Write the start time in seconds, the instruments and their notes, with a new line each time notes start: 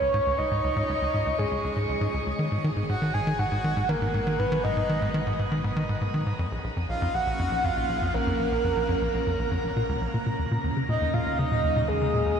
Already playing: sub bass C#2, string machine C#3 F3 G#3 D#4 G#4, soft synth lead C#5
0.02 analog synth bass C#2
0.14 analog synth bass G#2
0.27 analog synth bass C#2
0.38 analog synth bass C#2, soft synth lead D#5
0.51 analog synth bass G#2
0.64 analog synth bass C#2
0.76 analog synth bass G#2
0.89 analog synth bass C#2
1.02 analog synth bass C#2
1.14 analog synth bass G#2
1.26 analog synth bass C#2
1.39 analog synth bass G#2, soft synth lead G#4
1.51 analog synth bass C#2
1.64 analog synth bass C#2
1.76 analog synth bass G#2
1.89 analog synth bass C#2
2.01 analog synth bass G#2
2.14 analog synth bass C#2
2.27 analog synth bass C#2
2.39 sub bass G#1, string machine B2, analog synth bass D#3
2.51 analog synth bass G#2, string machine F#3
2.64 analog synth bass D#3
2.77 analog synth bass G#2
2.89 analog synth bass G#2, soft synth lead F#5
3.02 analog synth bass D#3
3.14 analog synth bass G#2, soft synth lead G#5
3.27 analog synth bass D#3
3.39 analog synth bass G#2, soft synth lead F#5
3.52 analog synth bass G#2
3.64 analog synth bass D#3
3.77 analog synth bass G#2
3.89 analog synth bass D#3, soft synth lead A#4
4.02 analog synth bass G#2
4.14 analog synth bass G#2
4.27 analog synth bass D#3
4.39 analog synth bass G#2, soft synth lead B4
4.52 analog synth bass D#3
4.64 analog synth bass G#2, soft synth lead D#5
4.77 analog synth bass G#2
4.89 analog synth bass D#3
5.02 analog synth bass G#2
5.14 analog synth bass D#3
5.27 analog synth bass G#2
5.39 analog synth bass G#2
5.52 analog synth bass D#3
5.64 analog synth bass G#2
5.77 analog synth bass D#3
5.89 analog synth bass G#2
6.01 analog synth bass G#2
6.14 analog synth bass D#3
6.26 analog synth bass G#2
6.39 sub bass A#1, analog synth bass F2, string machine C#3
6.52 analog synth bass A#1
6.64 analog synth bass A#1
6.77 analog synth bass F2
6.87 analog synth bass A#1, string machine F3, soft synth lead F5
7.00 analog synth bass F2, string machine A#3
7.14 analog synth bass A#1, soft synth lead F#5
7.20 string machine C#4
7.27 analog synth bass A#1
7.39 analog synth bass F2
7.51 analog synth bass A#1
7.64 analog synth bass F2, soft synth lead F5
7.77 analog synth bass A#1
7.89 analog synth bass A#1
8.02 analog synth bass F2
8.14 analog synth bass A#1, soft synth lead A#4
8.19 string machine A#4
8.27 analog synth bass F2
8.39 analog synth bass A#1
8.52 analog synth bass A#1
8.64 analog synth bass F2
8.76 analog synth bass A#1
8.89 analog synth bass F2
9.02 analog synth bass A#1
9.14 analog synth bass A#1
9.27 analog synth bass F2
9.39 analog synth bass A#1
9.51 analog synth bass F2
9.64 analog synth bass A#1
9.77 analog synth bass A#2
9.89 analog synth bass C#2
10.01 analog synth bass A#1
10.14 analog synth bass A#2
10.26 analog synth bass A#2
10.39 analog synth bass D#2, sub bass D#2
10.51 analog synth bass A#2
10.64 analog synth bass D#2
10.73 analog synth bass C#3, string machine D#4
10.80 string machine F#3
10.89 analog synth bass A#2, soft synth lead D#5
11.01 analog synth bass D#2
11.14 analog synth bass A#2, soft synth lead F5
11.26 analog synth bass D#2
11.38 analog synth bass C#3, soft synth lead D#5
11.52 analog synth bass A#2
11.64 analog synth bass D#2
11.76 analog synth bass A#2
11.88 analog synth bass D#2, soft synth lead G#4
12.01 analog synth bass C#3
12.14 analog synth bass A#2
12.26 analog synth bass D#2